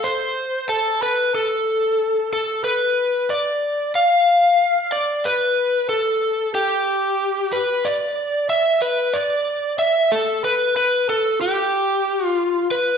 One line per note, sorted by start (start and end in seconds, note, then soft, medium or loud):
0.04 0.66 C5 medium
0.69 1.02 A4 medium
1.03 1.35 B4 medium
1.35 2.29 A4 medium
2.33 2.64 A4 medium
2.64 3.32 B4 medium
3.30 3.91 D5 medium
3.95 4.96 F5 medium
4.92 5.26 D5 medium
5.25 5.89 B4 medium
5.89 6.54 A4 medium
6.55 7.56 G4 medium
7.53 7.87 B4 medium
7.85 8.49 D5 medium
8.50 8.80 E5 medium
8.82 9.16 B4 medium
9.14 9.76 D5 medium
9.79 10.13 E5 medium
10.12 10.44 A4 medium
10.44 10.75 B4 medium
10.77 11.09 B4 medium
11.10 11.40 A4 medium
11.41 12.26 G4 medium
12.26 12.67 F4 medium
12.71 12.98 B4 medium